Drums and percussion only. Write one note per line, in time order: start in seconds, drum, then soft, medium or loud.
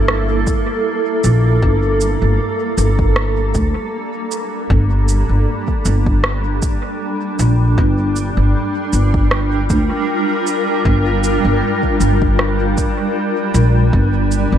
0.08 cross-stick medium
0.47 kick loud
0.47 cabasa medium
1.24 cabasa medium
1.62 kick loud
2.01 cabasa soft
2.78 cabasa soft
2.99 kick loud
3.16 cross-stick medium
3.55 kick loud
3.55 cabasa medium
4.31 cabasa soft
4.70 kick loud
5.08 cabasa soft
5.68 kick medium
5.85 cabasa soft
6.06 kick loud
6.24 cross-stick medium
6.62 kick loud
6.62 cabasa soft
7.39 cabasa soft
7.78 kick loud
8.16 cabasa soft
8.93 cabasa soft
9.14 kick loud
9.31 cross-stick medium
9.70 kick medium
9.70 cabasa soft
10.47 cabasa soft
10.85 kick loud
11.24 cabasa soft
11.83 kick medium
12.01 cabasa soft
12.22 kick medium
12.39 cross-stick medium
12.77 kick medium
12.77 cabasa medium
13.55 cabasa soft
13.93 kick loud
14.31 cabasa soft